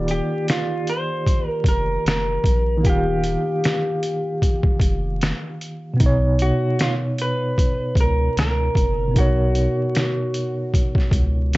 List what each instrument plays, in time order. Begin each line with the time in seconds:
Already playing: sub bass D#1, tine electric piano D#3 A#3 F4 G4 D5
0.08 clean electric guitar G4, closed hi-hat
0.48 clean electric guitar F4, snare, closed hi-hat
0.87 clean electric guitar C5, closed hi-hat
1.27 kick, closed hi-hat
1.48 clean electric guitar A#4
1.64 sub bass F1, kick, closed hi-hat
1.69 clean electric guitar A#4
2.05 sub bass F1, clean electric guitar A#4, snare, closed hi-hat
2.44 sub bass A#1, kick, closed hi-hat
2.77 tine electric piano D#3 A#3
2.83 sub bass D#1, tine electric piano F4 G4, clean electric guitar G4, kick, closed hi-hat
2.90 tine electric piano F5
3.24 closed hi-hat
3.64 snare, closed hi-hat
4.03 closed hi-hat
4.42 kick, closed hi-hat
4.63 kick
4.80 sub bass F1, kick, closed hi-hat
5.21 snare, closed hi-hat
5.61 closed hi-hat
5.93 tine electric piano B2 B3
6.00 sub bass B1, tine electric piano D#4, kick, closed hi-hat
6.06 tine electric piano C#5
6.39 clean electric guitar F#4, closed hi-hat
6.79 clean electric guitar F4, snare, closed hi-hat
7.18 clean electric guitar B4, closed hi-hat
7.58 kick, closed hi-hat
7.95 sub bass C#2, kick, closed hi-hat
8.01 clean electric guitar A#4
8.37 sub bass C#2, clean electric guitar A#4, snare, closed hi-hat
8.75 sub bass F#1, kick, closed hi-hat
9.08 tine electric piano B2 B3
9.14 sub bass B1, tine electric piano D#4 A#4, kick, closed hi-hat
9.18 clean electric guitar F#4, tine electric piano C#5
9.55 closed hi-hat
9.95 snare, closed hi-hat
10.34 closed hi-hat
10.74 kick, closed hi-hat
10.95 kick, snare
11.11 sub bass C#2, kick, closed hi-hat
11.53 closed hi-hat